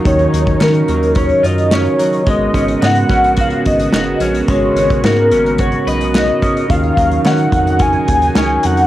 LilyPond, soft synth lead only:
\new Staff \with { instrumentName = "Soft synth lead" } { \time 4/4 \key ees \minor \tempo 4 = 108 des''4 bes'4 des''8 ees''8 des''4 | ees''4 ges''4 f''8 ees''4 r8 | des''4 bes'4 des''8 ees''8 ees''4 | f''4 ges''4 aes''4. ges''8 | }